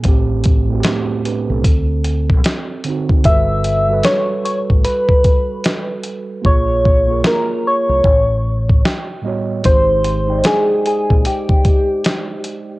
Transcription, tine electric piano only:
0.02 0.47 A2 medium
0.02 0.48 A3 medium
0.02 0.49 C4 loud
0.08 0.50 G4 loud
0.68 1.65 A2 medium
0.68 1.66 A3 medium
0.68 0.87 C4 medium
0.74 0.77 F#4 medium
0.80 0.85 G4 medium
0.87 1.24 B3 medium
0.87 1.24 G4 medium
1.26 1.49 D4 medium
1.26 1.48 B4 medium
1.50 1.88 C4 soft
1.50 1.87 A4 medium
2.84 3.16 D3 medium
2.84 3.16 C4 medium
2.84 3.17 D#4 medium
2.90 3.18 F#4 medium
3.24 3.68 G3 medium
3.24 3.69 F#4 medium
3.24 3.70 A4 medium
3.29 3.71 B4 medium
3.88 5.03 G3 medium
3.88 5.04 F#4 medium
3.88 5.04 A4 medium
3.93 5.05 B4 medium
6.42 6.87 A#3 medium
6.42 6.88 F4 medium
6.42 6.89 G#4 medium
6.48 6.90 C#5 medium
7.07 8.04 A#3 medium
7.07 8.05 F4 medium
7.07 8.06 G#4 medium
7.12 8.07 A#4 medium
8.86 9.23 G5 medium
9.22 9.54 A2 medium
9.22 9.55 G3 medium
9.22 9.56 B3 medium
9.22 9.62 D#5 medium
9.26 9.56 F#4 medium
9.26 9.57 C#5 medium
9.63 10.08 G#3 medium
9.63 10.09 D#4 medium
9.67 10.10 G4 medium
9.67 10.11 C5 medium
10.26 11.42 G#3 medium
10.26 11.43 D#4 medium
10.26 11.44 G5 medium
10.32 10.36 D5 medium
10.38 11.48 D#5 medium

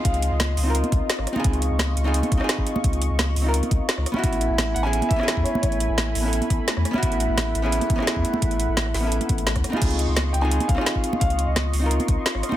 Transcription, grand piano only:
0.04 0.32 F5 loud
0.30 0.37 D#5 medium
0.38 1.05 D#5 medium
4.74 4.84 F#5 loud
4.83 5.08 G#5 loud
5.09 5.42 E5 loud
5.44 5.60 C#5 medium
5.61 6.11 C#5 medium
10.33 10.42 G5 loud
10.42 10.67 G#5 loud
10.68 11.19 F5 loud
11.20 11.48 F5 loud
11.46 11.53 D#5 medium
11.55 12.21 D#5 medium

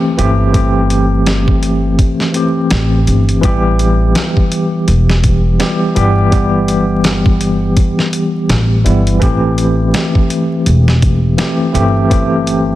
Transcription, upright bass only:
0.19 1.96 G1 medium
2.71 3.04 A1 medium
3.08 3.40 G1 medium
3.44 4.13 A1 loud
4.88 5.57 E1 medium
5.96 7.74 G1 medium
8.49 8.82 A1 medium
8.86 9.18 G1 medium
9.22 9.91 A1 medium
10.66 11.36 E1 medium
11.74 12.75 G1 medium

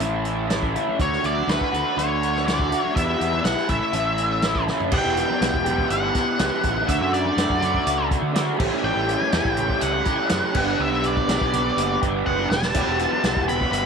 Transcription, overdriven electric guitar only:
0.00 0.74 A2 medium
0.00 0.47 E3 medium
0.00 0.48 A3 medium
0.00 0.49 C#4 loud
0.00 0.50 E4 medium
0.48 0.97 E3 medium
0.48 0.75 A3 medium
0.48 0.74 C#4 medium
0.48 0.73 E4 medium
0.74 0.99 A3 medium
0.74 0.98 C#4 medium
0.74 0.97 E4 medium
0.99 1.46 D3 medium
0.99 1.24 A3 medium
0.99 1.22 D4 medium
0.99 1.21 F#4 loud
1.22 1.47 A3 medium
1.22 1.48 D4 medium
1.22 1.49 F#4 medium
1.47 1.95 D3 medium
1.47 1.73 A3 medium
1.47 1.71 D4 medium
1.47 1.70 F#4 medium
1.72 1.96 A3 medium
1.72 1.97 D4 medium
1.72 1.97 F#4 medium
1.96 2.44 D3 loud
1.96 2.45 A3 loud
1.96 2.46 D4 medium
1.96 2.47 F#4 medium
2.45 2.94 D3 medium
2.45 2.71 A3 medium
2.45 2.70 D4 medium
2.45 2.68 F#4 medium
2.69 2.95 A3 medium
2.69 2.94 D4 medium
2.69 2.94 F#4 medium
2.94 3.44 E2 medium
2.94 3.44 B2 medium
2.94 3.19 E3 medium
2.94 3.20 G3 medium
2.94 3.18 B3 loud
2.94 3.17 E4 medium
3.19 3.42 E3 medium
3.19 3.43 G3 medium
3.19 3.44 B3 medium
3.19 3.45 E4 medium
3.43 3.67 E3 medium
3.43 3.68 G3 medium
3.43 3.68 B3 medium
3.43 3.66 E4 medium
3.67 3.91 A2 medium
3.67 3.92 E3 medium
3.67 3.92 A3 medium
3.67 3.93 C#4 medium
3.67 3.94 E4 medium
3.92 4.67 A2 medium
3.92 4.41 E3 medium
3.92 4.42 A3 medium
3.92 4.43 C#4 medium
3.92 4.44 E4 medium
4.42 4.90 E3 medium
4.42 4.68 A3 medium
4.42 4.66 C#4 medium
4.42 4.65 E4 medium
4.66 4.92 A3 medium
4.66 4.91 C#4 medium
4.66 4.90 E4 medium
4.91 5.64 E2 medium
4.91 5.64 B2 medium
4.91 5.64 E3 medium
4.91 5.64 G3 medium
4.91 5.64 B3 medium
4.91 5.63 G4 medium
5.64 6.37 E2 medium
5.64 6.38 B2 medium
5.64 6.38 E3 medium
5.64 6.38 G3 medium
5.64 6.38 B3 medium
5.64 6.37 G4 medium
6.38 6.86 E2 medium
6.38 6.87 B2 medium
6.38 6.86 E3 medium
6.38 6.87 G3 medium
6.38 6.87 B3 medium
6.38 6.88 G4 medium
6.87 7.60 D3 medium
6.87 7.62 A3 medium
6.87 7.60 D4 medium
6.87 7.59 F#4 loud
7.60 8.32 D3 medium
7.60 8.33 A3 medium
7.60 8.33 D4 medium
7.60 8.33 F#4 medium
8.33 8.57 D3 medium
8.33 8.58 A3 medium
8.33 8.58 D4 medium
8.33 8.59 F#4 medium
8.57 9.31 A2 medium
8.57 9.31 E3 loud
8.57 9.33 G3 loud
8.57 9.32 C#4 loud
8.57 9.34 G4 loud
9.32 10.04 A2 medium
9.32 10.05 E3 medium
9.32 10.07 G3 medium
9.32 10.05 C#4 medium
9.32 10.06 G4 medium
10.06 10.55 A2 medium
10.06 10.55 E3 medium
10.06 10.56 G3 medium
10.06 10.54 C#4 medium
10.06 10.57 G4 medium
10.54 11.26 G2 loud
10.54 11.27 D3 medium
10.54 11.28 G3 medium
10.54 11.29 B3 loud
10.54 11.28 D4 loud
10.54 11.30 G4 loud
11.27 12.00 G2 medium
11.27 12.00 D3 medium
11.27 12.01 G3 medium
11.27 12.01 B3 medium
11.27 12.01 D4 medium
11.27 12.00 G4 medium
12.01 12.51 G2 medium
12.01 12.51 D3 medium
12.01 12.50 G3 medium
12.01 12.50 B3 medium
12.01 12.50 D4 medium
12.01 12.49 G4 medium
12.74 13.47 E2 medium
12.74 13.47 B2 medium
12.74 13.47 E3 medium
12.74 13.48 G3 medium
12.74 13.47 B3 medium
12.74 13.46 G4 loud
13.48 13.86 E2 medium
13.48 13.86 B2 medium
13.48 13.86 E3 medium
13.48 13.86 G3 medium
13.48 13.86 B3 medium
13.48 13.86 G4 medium

